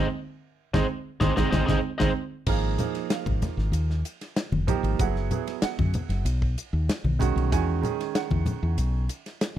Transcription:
0.74 G#1 G#3 C4 D#4 G#4 C5 D#5, kick, snare, high conga
1.20 G#1 G#3 C4 D#4 G#4 C5 D#5, kick, snare, high conga
1.37 G#1 G#3 C4 D#4 G#4 C5 D#5, kick, snare, high conga
1.51 G#1 G#3 C4 D#4 G#4 C5 D#5, kick, snare, high conga
1.66 G#1 G#3 C4 D#4 G#4 C5 D#5, kick, snare, high conga
1.98 G#1 G#3 C4 D#4 G#4 C5 D#5, kick, snare, high conga
2.46 G#1 F3 A#3 D#4 G#4 F5, kick, crash
2.78 F3 A#3 D#4 G#4, hi-hat pedal, ride, low conga
2.95 snare, ride
3.10 F5, snare, hi-hat pedal, ride
3.26 G#1, kick, high conga
3.42 snare, hi-hat pedal, ride, low conga
3.57 G#1, snare
3.72 D#2, hi-hat pedal, ride
3.90 snare
4.05 hi-hat pedal, ride
4.21 snare, ride
4.36 snare, hi-hat pedal, ride
4.52 F1, high conga
4.67 F3 A#3 D#4 G4, kick, hi-hat pedal, ride, low conga
4.83 G#1, ride
4.99 F#1 F#3 B3 E4 G#4 F#5, kick, hi-hat pedal, ride
5.16 snare
5.31 F#3 B3 E4 G#4, hi-hat pedal, ride, low conga
5.47 snare, ride
5.62 F#5, muted fretless electric bass stroke, snare, hi-hat pedal, ride
5.79 F#2, kick, high conga
5.94 hi-hat pedal, ride, low conga
6.09 F#1, snare, ride
6.25 B1, hi-hat pedal, ride
6.42 kick
6.58 hi-hat pedal, ride
6.73 D#2
6.88 muted fretless electric bass stroke, snare, hi-hat pedal, ride
7.04 B1, high conga
7.19 D#3 G#3 C#4 F#4, kick, hi-hat pedal, ride, low conga
7.36 B1, ride
7.52 E2 D#3 G#3 C#4 F#4 G#5, kick, hi-hat pedal, ride
7.81 D#3 G#3 C#4 G#4, hi-hat pedal, ride, low conga
8.01 snare, ride
8.15 F#5, snare, hi-hat pedal, ride
8.31 E2, kick, high conga
8.46 hi-hat pedal, ride, low conga
8.63 E2
8.78 B1, hi-hat pedal, ride
9.09 hi-hat pedal, ride
9.26 snare, ride
9.41 snare, hi-hat pedal, ride

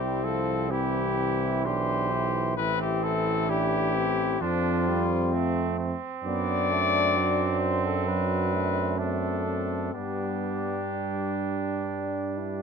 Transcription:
Already playing: C2 G3 C4 E4 G4
0.24 F3 A4
0.70 E3 C4 E4 G4
1.18 C4
1.66 B1 D4 G4 C5
2.11 E4
2.56 A1 E3 C4 E4 B4
2.81 G4
3.03 A4
3.49 D4 E4 G4
3.96 C4
4.41 F2 F3 C4 D4 F4
4.88 G3
5.33 A3 C4
5.79 C4
6.24 F#2 B3 D4 D5
6.71 A3
7.17 F#3
7.60 C5
7.85 A4
8.06 F#3 D4 B4
8.53 A3
8.98 C4 D4 A4
9.47 C4
9.93 G2 G3 B3 D4 G4
10.92 D4
12.38 E4

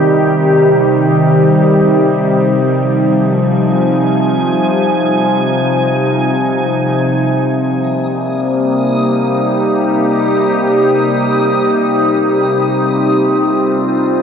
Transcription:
Already playing: C3 D#3 G3 D#4 G4
2.52 F3
3.11 G#5
7.42 D#6
7.55 G3 A#3
8.60 D#4
8.78 G4
12.04 C4
13.09 F4
13.76 D4

